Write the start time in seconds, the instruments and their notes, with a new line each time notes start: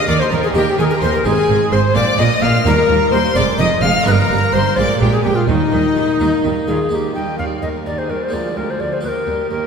0.08 double bass section D#2, cello section D#3, harpsichord D#3, viola section A#4, violin section D5 D6, recorder D5
0.19 viola section G4, violin section C5 C6, recorder C5
0.30 double bass section D#2, cello section D#3, harpsichord D#3, violin section A#4 A#5, viola section A#4, recorder A#4
0.43 viola section G4, recorder G#4, violin section G#4 G#5
0.54 double bass section D#2, cello section D#3, harpsichord D#3 A#3 D#4 G4, recorder G4, violin section G4 G5, viola section A#4
0.66 viola section G4
0.77 double bass section D#2, cello section D#3, harpsichord D#3, violin section G#4 G#5, recorder G#4, viola section A#4
0.90 viola section G4, recorder A#4, violin section A#4 A#5
1.01 double bass section D#2, cello section D#3, harpsichord D#3, viola section A#4, violin section C5 C6, recorder C5
1.13 viola section G4, recorder A#4, violin section A#4 A#5
1.25 double bass section G#1, cello section G#2, harpsichord G#2 C4 D#4 G#4, viola section C4, violin section G#4 G#5, recorder G#4
1.48 double bass section G#1, cello section G#2, harpsichord G#2, viola section C4
1.71 double bass section G#1, cello section G#2, harpsichord G#2, viola section C4, violin section C5 C6, recorder C5
1.94 double bass section A#1, harpsichord A#2 A#3 D4 F4, cello section A#2, viola section A#3, recorder D5, violin section D5 D6
2.18 double bass section A#1, cello section A#2, harpsichord A#2, viola section A#3, recorder D#5, violin section D#5 D#6
2.41 double bass section A#1, cello section A#2, harpsichord A#2, viola section A#3, recorder F5, violin section F5 F6
2.65 cello section D#2, double bass section D#2, harpsichord D#2 A#3 D#4 G4, viola section G3, violin section A#4 A#5, recorder A#4
2.88 cello section D#2, double bass section D#2, harpsichord D#2, viola section G3
3.11 cello section D#2, harpsichord D#2, double bass section D#2, viola section G3, violin section C5 C6, recorder C5
3.35 double bass section F1, cello section F2, harpsichord F2 G#3 D4 G#4, viola section G#3, recorder D5, violin section D5 D6
3.58 double bass section F1, cello section F2, harpsichord F2, viola section G#3, recorder D#5, violin section D#5 D#6
3.82 double bass section F1, harpsichord F2, cello section F2, viola section G#3, violin section F5 F6, recorder F5
4.05 double bass section G1, cello section G2, harpsichord G2 A#3 D#4 G4, viola section G3, violin section A#4 A#5, recorder B4
4.11 recorder A#4
4.29 double bass section G1, harpsichord G2, cello section G2, viola section G3
4.53 double bass section G1, cello section G2, harpsichord G2, viola section G3, recorder C5, violin section C5 C6
4.76 double bass section A#1, harpsichord A#2 G#3 A#3 F4, cello section A#2, viola section G#3, violin section D5 D6, recorder D5
5.00 double bass section A#1, harpsichord A#2, cello section A#2, viola section G#3, recorder G4, violin section G4 G5
5.12 violin section G#4 G#5, recorder G#4
5.23 double bass section A#1, harpsichord A#2, cello section A#2, viola section G#3, violin section G4 G5, recorder G4
5.35 recorder F4, violin section F4 F5
5.48 double bass section D#2, harpsichord D#3, cello section D#3, viola section G3, recorder D#4, violin section D#4 D#5
5.72 double bass section D#2, harpsichord D#3, cello section D#3, viola section G3
5.96 double bass section D#2, harpsichord D#3, cello section D#3, viola section G3
6.20 double bass section D#2, harpsichord D#3 A#3 D#4, cello section D#3, viola section G3
6.44 double bass section D#2, cello section D#3, harpsichord D#3, viola section G3
6.67 double bass section D#2, harpsichord D#3, cello section D#3, viola section G3, violin section F4, recorder G#4
6.89 cello section D#2, harpsichord D#2 A#3 D#4, viola section D#3, violin section A#3 D#4, recorder G#4
6.95 recorder G4
7.15 cello section D#2, harpsichord D#2, viola section G3, violin section D#4 D#5, recorder G5
7.38 cello section D#2, harpsichord D#2, viola section D#3, violin section A#3 D5, recorder F5
7.62 cello section D#2, harpsichord D#2, viola section G3, violin section D#4 A#4, recorder D#5
7.86 harpsichord D#2, cello section D#2, viola section D#3, violin section A#3 A#4, recorder D5
7.98 violin section G#4, recorder C5
8.10 cello section D#2, harpsichord D#2, viola section G3, violin section D#4 G4, recorder A#4
8.21 violin section G#4, recorder C5
8.29 harpsichord G#3 A#3 F4
8.33 harpsichord D2, cello section D2, viola section F3, violin section A#3 A#4, recorder D5
8.57 cello section D2, harpsichord D2, viola section G#3, violin section D4 G4, recorder A#4
8.68 violin section G#4, recorder C5
8.80 cello section D2, harpsichord D2, viola section F3, violin section A#3 A#4, recorder D5
8.92 violin section G#4, recorder C5
9.01 cello section D#2, harpsichord D#2 D#4 G4, viola section A#3, violin section D#4 G4, recorder B4
9.08 recorder A#4
9.26 cello section D#2, harpsichord D#2, viola section G3, violin section G4
9.50 cello section D#2, harpsichord D#2, viola section A#3, violin section D#4 G4, recorder A#4